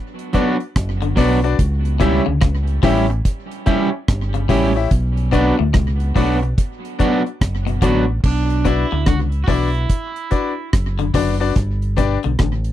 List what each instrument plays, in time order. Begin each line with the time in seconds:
0.19 closed hi-hat
0.33 clean electric guitar F#3 B3 D4 F#4, grand piano D4 F#4 B4 D5, kick, closed hi-hat
0.60 closed hi-hat
0.76 fingered electric bass F#1, kick, cross-stick, closed hi-hat
1.02 clean electric guitar D3, closed hi-hat
1.16 fingered electric bass B1, clean electric guitar B2 F#3 B3 D4 F#4, grand piano D4 F#4 B4 D5, kick, open hi-hat
1.43 grand piano D4 F#4 B4 D5, closed hi-hat
1.59 fingered electric bass C#2, kick, closed hi-hat
1.85 closed hi-hat
1.99 clean electric guitar B2 G3 C#4 E4 G4, grand piano E4 G4 C#5 E5, kick, closed hi-hat
2.26 fingered electric bass D2, clean electric guitar C#3
2.41 fingered electric bass C#2, clean electric guitar C#3, kick, cross-stick, closed hi-hat
2.67 closed hi-hat
2.83 fingered electric bass A1, clean electric guitar E3 G3 C#4 E4 G4, grand piano E4 G4 C#5 E5, kick, cross-stick, open hi-hat
3.10 muted clean electric guitar stroke, closed hi-hat
3.25 kick, closed hi-hat
3.52 closed hi-hat
3.66 clean electric guitar G3 C#4 E4 G4, grand piano E4 G4 C#5 E5, kick, closed hi-hat
4.08 fingered electric bass G1, kick, cross-stick, closed hi-hat
4.34 clean electric guitar C#3, closed hi-hat
4.49 fingered electric bass A1, clean electric guitar C#3 G3 C#4 E4 G4, grand piano E4 G4 C#5 E5, kick, open hi-hat
4.75 grand piano E4 G4 C#5 E5
4.91 fingered electric bass B1, kick, closed hi-hat
5.17 closed hi-hat
5.31 clean electric guitar B2 F#3 B3 D4 F#4, grand piano D4 F#4 B4 D5, kick, closed hi-hat
5.59 fingered electric bass D2, clean electric guitar A2
5.74 fingered electric bass C#2, clean electric guitar B2, kick, cross-stick, closed hi-hat
6.00 closed hi-hat
6.15 fingered electric bass B1, clean electric guitar A2 F#3 B3 D4 F#4, grand piano D4 F#4 B4 D5, kick, open hi-hat
6.42 muted clean electric guitar stroke, closed hi-hat
6.58 kick, closed hi-hat
6.85 closed hi-hat
6.99 clean electric guitar F#3 B3 D4 F#4, grand piano D4 F#4 B4 D5, kick, closed hi-hat
7.26 closed hi-hat
7.41 fingered electric bass F#1, kick, cross-stick, closed hi-hat
7.67 clean electric guitar B2, closed hi-hat
7.82 fingered electric bass A1, clean electric guitar D3 F#3 B3 D4 F#4, grand piano D4 F#4 B4 D5, kick, closed hi-hat
8.24 fingered electric bass B1, clean electric guitar D4, kick, crash
8.50 closed hi-hat
8.64 clean electric guitar B2 E4, grand piano D4 F#4 B4 D5, kick, closed hi-hat
8.92 fingered electric bass D2, clean electric guitar D3
9.06 fingered electric bass C#2, clean electric guitar D3 F#4, kick, cross-stick, closed hi-hat
9.32 closed hi-hat
9.44 grand piano D4 F#4, clean electric guitar F#4, kick
9.48 fingered electric bass B1, clean electric guitar E3 E4, grand piano B4 D5, open hi-hat
9.74 closed hi-hat
9.90 kick, closed hi-hat
10.16 closed hi-hat
10.31 grand piano D4 F#4 B4 D5, kick, closed hi-hat
10.73 fingered electric bass F#1, kick, cross-stick, closed hi-hat
10.99 clean electric guitar D3, closed hi-hat
11.14 fingered electric bass F#1, clean electric guitar D3, grand piano D4 F#4 B4 D5, kick, open hi-hat
11.40 grand piano D4 F#4 B4 D5
11.56 fingered electric bass G1, kick, closed hi-hat
11.82 closed hi-hat
11.96 clean electric guitar B2, grand piano D4 G4 B4 D5, kick, closed hi-hat
12.23 fingered electric bass B1, clean electric guitar D3, closed hi-hat
12.39 fingered electric bass A1, clean electric guitar D3, kick, cross-stick, closed hi-hat
12.64 closed hi-hat